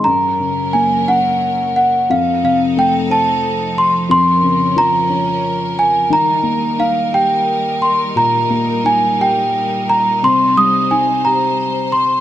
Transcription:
0.03 felt piano F#2, string section F#3 C#4 A#4, celesta A#5
0.40 felt piano C#3
0.73 felt piano A#3, celesta G#5
1.08 felt piano C#4, celesta F#5
1.76 celesta F#5
2.09 felt piano F2, string section F3 D#4 A4, celesta F5
2.43 felt piano C3, celesta F5
2.77 felt piano A3, celesta G5
3.10 felt piano C4, celesta A5
3.78 celesta C6
4.09 felt piano F2, string section C#4 A#4, celesta C6
4.42 felt piano C#3
4.76 felt piano F3, celesta A#5
5.09 felt piano C#4
5.79 celesta G#5
6.10 felt piano D#3, string section G3 D#4, celesta A#5
6.43 felt piano A#3
6.78 felt piano D#4, celesta F5
7.12 felt piano G4, celesta G5
7.82 celesta C6
8.16 felt piano A#2, celesta A#5
8.50 felt piano A#3
8.84 felt piano D#4, celesta G#5
9.19 felt piano G4, celesta G5
9.89 celesta A#5
10.22 felt piano C3, string section C5, celesta C6
10.57 felt piano G3, celesta D#6
10.90 felt piano D#4, celesta G#5
11.25 felt piano G4, celesta A#5
11.92 celesta C6

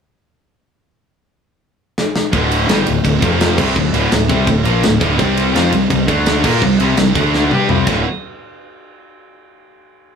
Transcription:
1.98 snare
2.16 snare
2.33 fingered electric bass D1, distorted electric guitar D2 A2 D3, kick, ride
2.51 ride
2.69 fingered electric bass G1, distorted electric guitar G2 D3 G3, snare, ride
2.87 fingered electric bass D1, distorted electric guitar D2 A2, ride
3.05 fingered electric bass D1, distorted electric guitar D2 A2, kick, ride
3.22 fingered electric bass F1, distorted electric guitar F2 C3 F3, kick, ride
3.41 snare, ride
3.58 fingered electric bass C2, distorted electric guitar C3 G3 C4, kick, crash
3.76 fingered electric bass D1, distorted electric guitar D2 A2, kick
3.93 fingered electric bass D1, distorted electric guitar D2 A2 D3, ride
4.12 fingered electric bass D1, distorted electric guitar D2 A2, snare, ride
4.29 fingered electric bass C2, distorted electric guitar C3 G3 C4, kick, ride
4.47 fingered electric bass D1, distorted electric guitar D2 A2, kick, ride
4.64 fingered electric bass A#1, distorted electric guitar A#2 F3 A#3, ride
4.83 fingered electric bass D1, distorted electric guitar D2 A2, snare, ride
5.01 fingered electric bass D1, distorted electric guitar D2 A2 D3, kick, ride
5.19 fingered electric bass C2, distorted electric guitar C3 G3 C4, kick, ride
5.37 ride
5.54 fingered electric bass F2, distorted electric guitar F3 C4 F4, snare, ride
5.71 fingered electric bass C2, distorted electric guitar C3 G3, ride
5.90 fingered electric bass C2, distorted electric guitar C3 G3, kick, ride
6.07 fingered electric bass D2, distorted electric guitar D3 A3 D4, kick, ride
6.26 snare, ride
6.44 fingered electric bass A#2, distorted electric guitar A#3 F4 A#4, kick, crash
6.61 fingered electric bass C2, distorted electric guitar C3 G3, kick
6.80 fingered electric bass C2, distorted electric guitar C3 G3 C4, ride
6.97 fingered electric bass C2, distorted electric guitar C3 G3, snare, ride
7.15 fingered electric bass D2, distorted electric guitar D3 A3 D4, kick, ride
7.34 snare
7.51 fingered electric bass G2, distorted electric guitar G3 D4 G4, high tom
7.69 fingered electric bass C2, distorted electric guitar C3 G3 C4, mid tom
7.87 fingered electric bass D1, distorted electric guitar D2 A2 D3, kick, crash

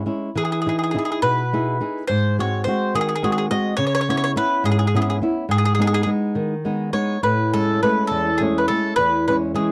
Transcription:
0.06 nylon-string guitar G#3 C#4 E4
0.35 nylon-string guitar E3, mandolin G#4
0.45 mandolin G#4
0.52 mandolin G#4
0.62 mandolin G#4
0.66 nylon-string guitar D#4 E4 G#4, mandolin G#4
0.79 mandolin G#4
0.84 mandolin G#4
0.91 nylon-string guitar D#4 E4, mandolin G#4
0.96 nylon-string guitar G#4, mandolin G#4
1.05 mandolin G#4
1.12 mandolin G#4
1.22 nylon-string guitar B2, mandolin B4
1.53 nylon-string guitar D#4 E4 G#4
1.80 nylon-string guitar D#4 E4 G#4
2.07 nylon-string guitar G#2, mandolin C5
2.39 nylon-string guitar G#3 C4 F#4, mandolin C#5
2.64 nylon-string guitar G#3 C4, mandolin C5
2.68 nylon-string guitar F#4
2.95 nylon-string guitar D#3, mandolin G#4
3.01 mandolin G#4
3.09 mandolin G#4
3.16 mandolin G#4
3.23 nylon-string guitar G#3 C4 F#4, mandolin G#4
3.32 mandolin G#4
3.38 mandolin G#4
3.51 nylon-string guitar G#3 C4 F#4, mandolin D#5
3.77 nylon-string guitar C#3, mandolin C#5
3.87 mandolin C#5
3.95 mandolin C#5
4.01 mandolin C#5
4.09 nylon-string guitar B3 C#4 E4, mandolin C#5
4.17 mandolin C#5
4.24 mandolin C#5
4.36 nylon-string guitar B3 C#4 E4, mandolin B4
4.64 nylon-string guitar G#2, mandolin G#4
4.72 mandolin G#4
4.79 mandolin G#4
4.87 mandolin G#4
4.94 nylon-string guitar B3 C#4 E4, mandolin G#4
5.02 mandolin G#4
5.10 mandolin G#4
5.22 nylon-string guitar B3 C#4 E4
5.49 nylon-string guitar G#2, mandolin G#4
5.58 mandolin G#4
5.65 mandolin G#4
5.75 mandolin G#4
5.79 nylon-string guitar G#3 B3 D#4, mandolin G#4
5.87 mandolin G#4
5.94 mandolin G#4
6.03 nylon-string guitar G#3 B3, mandolin G#4
6.07 nylon-string guitar D#4
6.35 nylon-string guitar D#3
6.65 nylon-string guitar G#3 B3 D#4
6.93 nylon-string guitar G#3 B3 D#4, mandolin C#5
7.23 nylon-string guitar A2, mandolin B4
7.54 nylon-string guitar G#3 A3 C#4, mandolin A4
7.83 nylon-string guitar G#3 A3 C#4, mandolin B4
8.07 nylon-string guitar E2, mandolin A4
8.38 nylon-string guitar G#3 A3 C#4, mandolin G#4
8.58 mandolin B4
8.68 nylon-string guitar G#3 A3 C#4, mandolin A4
8.96 nylon-string guitar E2, mandolin B4
9.28 nylon-string guitar E3 G#3 C#4, mandolin B4
9.54 nylon-string guitar E3 G#3 C#4, mandolin G#4

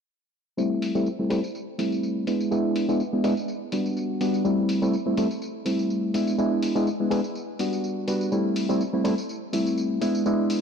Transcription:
0.57 reed electric piano G3 A3 C4 E4, tambourine
0.82 open hi-hat, tambourine
0.95 reed electric piano G3 A3 C4 E4, tambourine
1.06 tambourine
1.19 reed electric piano G3 A3 C4 E4
1.30 reed electric piano G3 A3 C4 E4, open hi-hat, tambourine
1.44 tambourine
1.55 tambourine
1.78 reed electric piano G3 A3 C4 E4, open hi-hat, tambourine
1.92 tambourine
2.03 tambourine
2.27 reed electric piano G#3 B3 D4 E4, open hi-hat, tambourine
2.40 tambourine
2.51 reed electric piano G#3 B3 D4 E4, tambourine
2.76 open hi-hat, tambourine
2.88 reed electric piano G#3 B3 D4 E4, tambourine
3.00 tambourine
3.13 reed electric piano G#3 B3 D4 E4
3.24 reed electric piano G#3 B3 D4 E4, open hi-hat, tambourine
3.37 tambourine
3.48 tambourine
3.72 reed electric piano G3 B3 D4 F#4, open hi-hat, tambourine
3.86 tambourine
3.97 tambourine
4.20 reed electric piano G3 B3 D4 F#4, open hi-hat, tambourine
4.34 tambourine
4.44 reed electric piano G3 A3 C4 E4, tambourine
4.69 open hi-hat, tambourine
4.82 reed electric piano G3 A3 C4 E4, tambourine
4.93 tambourine
5.06 reed electric piano G3 A3 C4 E4
5.17 reed electric piano G3 A3 C4 E4, open hi-hat, tambourine
5.31 tambourine
5.42 tambourine
5.56 tambourine
5.65 reed electric piano G3 A3 C4 E4, open hi-hat, tambourine
5.79 tambourine
5.90 tambourine
6.04 tambourine
6.14 reed electric piano G#3 B3 D4 E4, open hi-hat, tambourine
6.27 tambourine
6.38 reed electric piano G#3 B3 D4 E4, tambourine
6.62 open hi-hat, tambourine
6.75 reed electric piano G#3 B3 D4 E4, tambourine
6.87 tambourine
7.00 reed electric piano G#3 B3 D4 E4, tambourine
7.10 reed electric piano G#3 B3 D4 E4, open hi-hat, tambourine
7.24 tambourine
7.35 tambourine
7.48 tambourine
7.59 reed electric piano G3 B3 D4 F#4, open hi-hat, tambourine
7.73 tambourine
7.84 tambourine
7.97 tambourine
8.07 reed electric piano G3 B3 D4 F#4, open hi-hat, tambourine
8.21 tambourine
8.32 reed electric piano G3 A3 C4 E4, tambourine
8.46 tambourine
8.56 open hi-hat, tambourine
8.69 reed electric piano G3 A3 C4 E4, tambourine
8.81 tambourine
8.93 reed electric piano G3 A3 C4 E4, tambourine
9.04 reed electric piano G3 A3 C4 E4, open hi-hat, tambourine
9.18 tambourine
9.29 tambourine
9.42 tambourine
9.53 reed electric piano G3 A3 C4 E4, open hi-hat, tambourine
9.66 tambourine
9.76 tambourine
9.90 tambourine
10.01 reed electric piano G#3 B3 D4 E4, open hi-hat, tambourine
10.14 tambourine
10.26 reed electric piano G#3 B3 D4 E4, tambourine
10.38 tambourine
10.49 open hi-hat, tambourine

